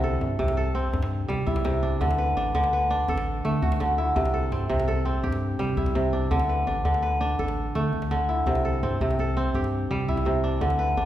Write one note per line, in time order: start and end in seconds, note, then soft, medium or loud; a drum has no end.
0.00 0.18 C2 loud
0.00 0.38 C3 medium
0.00 1.12 A3 medium
0.00 0.27 D4 medium
0.00 1.24 E4 medium
0.00 0.77 F#4 medium
0.00 0.57 A4 medium
0.00 djembe slap soft
0.21 0.38 G2 loud
0.21 djembe tone medium
0.30 djembe slap soft
0.39 0.89 C2 loud
0.39 1.64 C3 medium
0.39 djembe slap soft
0.39 djembe bass medium
0.48 djembe slap medium
0.57 1.89 A4 medium
0.57 djembe slap soft
0.75 2.24 C4 medium
0.93 1.26 G2 loud
0.93 djembe tone medium
0.93 djembe bass medium
1.02 djembe slap medium
1.11 djembe slap soft
1.28 1.45 C3 medium
1.28 2.05 G3 medium
1.28 djembe tone medium
1.47 1.97 C2 loud
1.47 3.03 E4 medium
1.47 djembe bass medium
1.56 djembe slap medium
1.65 2.05 C3 medium
1.65 djembe tone medium
1.74 djembe slap soft
1.83 2.36 D4 medium
1.83 djembe slap soft
2.01 2.34 D2 medium
2.01 2.54 D3 medium
2.01 djembe tone medium
2.01 djembe bass medium
2.10 djembe slap medium
2.18 2.73 B4 medium
2.18 djembe slap soft
2.37 2.53 A1 medium
2.37 2.90 D4 medium
2.37 djembe slap soft
2.37 djembe tone medium
2.46 djembe slap soft
2.54 3.04 D2 loud
2.54 3.79 D3 medium
2.54 djembe slap soft
2.54 djembe bass medium
2.64 djembe slap medium
2.73 3.96 B4 medium
2.73 djembe slap soft
2.90 4.58 D4 medium
3.08 3.42 A1 loud
3.08 4.33 A4 medium
3.08 djembe tone medium
3.08 djembe bass medium
3.17 djembe slap medium
3.27 djembe slap soft
3.45 3.61 D3 medium
3.45 5.44 A3 medium
3.45 djembe tone medium
3.62 4.12 D2 loud
3.62 5.09 F#4 medium
3.62 djembe bass medium
3.72 djembe slap medium
3.80 4.21 D3 medium
3.80 djembe tone medium
3.90 djembe slap soft
3.98 5.55 E4 medium
3.98 djembe slap soft
4.16 4.49 C2 loud
4.16 4.68 C3 medium
4.16 djembe tone medium
4.16 djembe bass medium
4.25 djembe slap medium
4.34 4.87 A4 medium
4.52 4.68 G2 loud
4.52 5.05 C4 medium
4.52 djembe tone medium
4.70 5.20 C2 medium
4.70 5.94 C3 medium
4.70 djembe bass medium
4.80 djembe slap medium
4.88 6.19 A4 medium
4.88 djembe tone medium
5.05 6.55 C4 medium
5.15 djembe slap soft
5.23 5.57 G2 loud
5.23 6.65 G4 medium
5.23 djembe slap soft
5.23 djembe tone medium
5.23 djembe bass medium
5.32 djembe slap medium
5.59 5.76 C3 medium
5.59 6.36 G3 medium
5.59 djembe tone medium
5.69 djembe slap soft
5.77 6.27 C2 loud
5.77 7.34 E4 medium
5.77 djembe slap soft
5.77 djembe bass medium
5.86 djembe slap soft
5.95 6.36 C3 medium
5.95 djembe slap soft
5.95 djembe tone medium
6.13 6.67 D4 medium
6.13 djembe slap soft
6.31 6.64 D2 loud
6.31 6.84 D3 medium
6.31 djembe tone medium
6.31 djembe bass medium
6.40 djembe slap soft
6.49 7.02 B4 medium
6.49 djembe slap soft
6.67 6.84 A1 loud
6.67 7.20 D4 medium
6.67 djembe slap soft
6.67 djembe tone medium
6.76 djembe slap soft
6.85 7.35 D2 medium
6.85 8.10 D3 medium
6.85 djembe slap soft
6.85 djembe bass medium
6.94 djembe slap soft
7.02 8.25 B4 medium
7.02 djembe slap soft
7.02 djembe tone medium
7.21 8.89 D4 medium
7.39 7.72 A1 loud
7.39 8.64 A4 medium
7.39 djembe tone medium
7.39 djembe bass medium
7.48 djembe slap medium
7.58 djembe slap soft
7.75 7.92 D3 medium
7.75 9.75 A3 medium
7.75 djembe tone medium
7.93 8.43 D2 medium
7.93 djembe bass medium
8.02 djembe slap soft
8.11 8.52 D3 medium
8.11 djembe tone medium
8.20 djembe slap soft
8.28 9.85 E4 medium
8.28 djembe slap soft
8.46 8.80 C2 medium
8.46 9.00 C3 medium
8.46 djembe tone medium
8.46 djembe bass medium
8.55 djembe slap soft
8.65 9.19 A4 medium
8.65 djembe slap soft
8.83 8.99 G2 loud
8.83 9.36 C4 medium
8.83 djembe slap soft
8.83 djembe tone medium
8.92 djembe slap soft
9.01 9.50 C2 medium
9.01 10.25 C3 medium
9.01 djembe slap soft
9.01 djembe bass medium
9.10 djembe slap soft
9.19 10.51 A4 medium
9.19 djembe slap soft
9.19 djembe tone medium
9.37 10.85 C4 medium
9.55 9.87 G2 loud
9.55 10.96 G4 medium
9.55 djembe tone medium
9.55 djembe bass medium
9.64 djembe slap soft
9.73 djembe slap soft
9.90 10.07 C3 medium
9.90 10.67 G3 medium
9.90 djembe tone medium
10.08 10.58 C2 medium
10.08 11.05 E4 medium
10.08 djembe bass medium
10.17 djembe slap soft
10.25 10.67 C3 medium
10.25 djembe tone medium
10.35 djembe slap soft
10.43 10.97 D4 medium
10.43 djembe slap soft
10.61 10.95 D2 medium
10.61 11.05 D3 medium
10.61 djembe tone medium
10.61 djembe bass medium
10.70 djembe slap soft
10.79 11.05 B4 medium
10.79 djembe slap soft
10.97 11.05 A1 loud
10.97 11.05 D4 medium
10.97 djembe slap soft
10.97 djembe tone medium